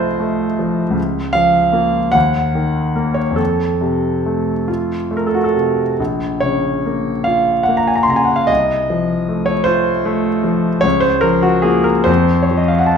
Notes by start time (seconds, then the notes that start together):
Already playing: C2 F3 A3 F4 C5 D#5
0.20 A3
0.59 F3
0.90 C#2
1.33 F3 F5
1.73 A#3 F4
2.12 D#2 F#5
2.55 D#3
2.96 A#3 A#4
3.14 C#5
3.31 F2
3.36 A4
3.81 C3
4.26 A3
4.68 F4
5.11 A3
5.17 A#4
5.27 A4
5.35 F#4
5.44 A4
5.54 C3
6.00 A#1
6.40 C#3 C#5
6.86 A#3
7.24 F4 F5
7.63 F#5
7.68 A#3
7.77 A#5
7.88 G#5
7.96 A#5
8.03 C6
8.08 C#3 A#5
8.16 G#5
8.25 F#5
8.36 F5
8.47 C2 D#5
8.90 F3
9.29 A3
9.46 C#5
9.64 F4 C5
10.05 A3
10.44 F3
10.81 C#2 C#5
11.00 C5
11.21 F3 A#4
11.42 F#4
11.62 A#3 F4 G#4
11.84 A#4
12.04 F2 C5
12.43 C#5
12.51 F3
12.57 D#5
12.68 F5
12.79 F#5
12.86 A5